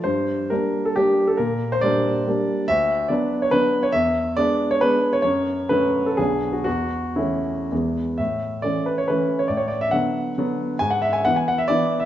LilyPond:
<<
  \new Staff \with { instrumentName = "Grand piano" } { \time 3/4 \key g \dorian \tempo 4 = 137 c''4 bes'8. a'16 g'8. a'16 | bes'8. c''16 d''2 | \key a \major e''4 d''8. cis''16 b'8. cis''16 | e''4 d''8. cis''16 b'8. cis''16 |
cis''4 b'8. a'16 gis'8. fis'16 | fis'4 e'4. r8 | e''4 d''8 b'16 cis''16 b'8. cis''16 | d''16 cis''16 d''16 e''16 fis''2 |
gis''16 fis''16 e''16 gis''16 fis''16 gis''16 fis''16 e''16 d''8. e''16 | }
  \new Staff \with { instrumentName = "Grand piano" } { \time 3/4 \key g \dorian g,4 <g bes d'>4 <g bes d'>4 | bes,4 <g bes d'>4 <g bes d'>4 | \key a \major d,4 <fis b d'>4 <fis b d'>4 | e,4 <gis b d'>4 <gis b d'>4 |
fis,4 <fis a cis'>4 <b,, fis b d'>4 | e,4 <e a cis'>4 <e, e gis b>4 | a,4 <e a cis'>4 <e a cis'>4 | a,4 <d fis b>4 <d fis b>4 |
gis,4 <e b e'>4 <e b e'>4 | }
>>